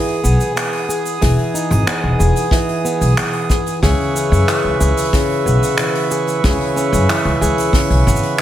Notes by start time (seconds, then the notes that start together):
Already playing: E3 B3 D#4 G#4 D#6
0.08 open hi-hat
0.24 B1 B3, shaker
0.40 open hi-hat, shaker
0.56 B3, finger snap, open hi-hat, shaker
0.73 open hi-hat
0.89 G#4, shaker
1.05 open hi-hat, shaker
1.22 E1 E3 G#4, kick, open hi-hat, shaker
1.39 open hi-hat
1.54 D#4, shaker
1.70 G#1, open hi-hat, shaker
1.87 B3, finger snap, open hi-hat, shaker
2.03 E1
2.19 E1 G#4, shaker
2.36 open hi-hat, shaker
2.51 E3, kick, open hi-hat, shaker
2.69 open hi-hat
2.85 B3, shaker
3.01 B1, open hi-hat, shaker
3.17 B3, finger snap, open hi-hat, shaker
3.33 open hi-hat
3.50 G#4, kick, shaker
3.66 open hi-hat, shaker
3.83 C#2 C#3 G#4 B4 E5 C#6, kick, open hi-hat, shaker
4.00 open hi-hat
4.15 C#4, shaker
4.32 F#2, open hi-hat, shaker
4.48 E3, finger snap, open hi-hat, shaker
4.64 C#2
4.80 C#2 G#4, shaker
4.97 open hi-hat, shaker
5.05 open hi-hat
5.13 C#3, kick, open hi-hat, shaker
5.22 open hi-hat
5.30 open hi-hat
5.46 B1 B3, shaker
5.62 open hi-hat, shaker
5.78 E3, finger snap, open hi-hat, shaker
5.95 open hi-hat
6.11 G#4, shaker
6.27 open hi-hat, shaker
6.44 C#2 C#3 G#4, kick, open hi-hat, shaker
6.61 open hi-hat
6.63 open hi-hat
6.65 open hi-hat
6.67 open hi-hat
6.70 open hi-hat
6.72 open hi-hat
6.75 C#4, open hi-hat, shaker
6.93 F#2, open hi-hat, shaker
7.09 E3, finger snap, open hi-hat, shaker
7.25 C#2, open hi-hat
7.41 C#2 G#4, shaker
7.58 open hi-hat, shaker
7.73 C#3, kick, open hi-hat, shaker
7.90 B1, open hi-hat
8.07 G#1 B3, kick, shaker
8.16 shaker
8.23 open hi-hat
8.38 finger snap